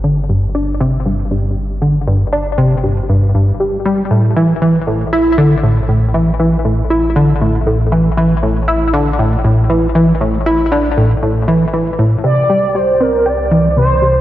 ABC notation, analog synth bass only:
X:1
M:4/4
L:1/8
Q:1/4=118
K:Aphr
V:1 name="Analog synth bass" clef=bass
D, G,, D C, G,, G,, z D, | G,, D C, G,, G,, G,, G,, G, | A,, E, E, A,, E D, A,, A,, | E, E, A,, E D, A,, A,, E, |
E, A,, E D, A,, A,, E, E, | A,, E D, A,, A,, E, E, A,, | C, G, G, C G E, C, C, |]